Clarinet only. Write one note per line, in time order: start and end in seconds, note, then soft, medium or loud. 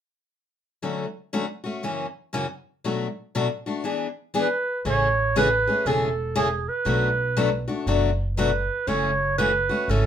4.39 4.84 B4 medium
4.90 5.34 C#5 medium
5.38 5.88 B4 medium
5.87 6.36 A4 medium
6.37 6.70 G#4 medium
6.69 7.69 B4 medium
8.38 8.89 B4 medium
8.87 9.37 C#5 loud
9.38 9.92 B4 medium
9.90 10.06 A4 medium